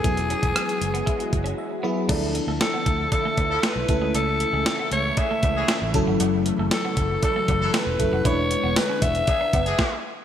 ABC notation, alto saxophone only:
X:1
M:4/4
L:1/8
Q:1/4=117
K:Emix
V:1 name="Alto saxophone"
G6- G z | z2 A2 A2 B2 | A3 c e3 z | z2 A2 A2 B2 |
c2 B e4 z |]